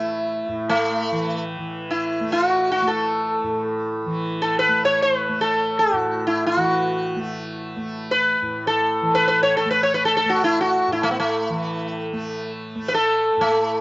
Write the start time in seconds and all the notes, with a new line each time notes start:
Already playing: A2 E3 A3 E4
0.48 A2
0.69 A3
1.11 E3
1.57 E3
1.91 E4
2.20 A3
2.32 F4
2.47 F#4
2.72 F#4
2.82 A3
2.87 A4
3.43 A2
4.06 E3
4.42 A4
4.59 B4
4.68 A3
4.85 C#5
5.02 C5
5.18 B4
5.29 A3
5.41 A4
5.79 F#4
5.93 A2
6.27 E4
6.47 F#4
6.56 E3
7.16 A3
7.76 A3
8.11 B4
8.42 A2
8.67 A4
9.02 E3
9.15 B4
9.28 B4
9.43 C#5
9.57 A4
9.65 A3
9.71 B4
9.83 C#5
9.94 B4
10.05 A4
10.17 A4
10.26 A3 F#4
10.44 E4
10.61 F#4
10.88 A2
10.92 E4
11.03 A3
11.11 B3
11.20 A3
11.49 E3
12.13 A3
12.75 A3
12.88 B4
12.94 A4
13.37 A2
13.41 A3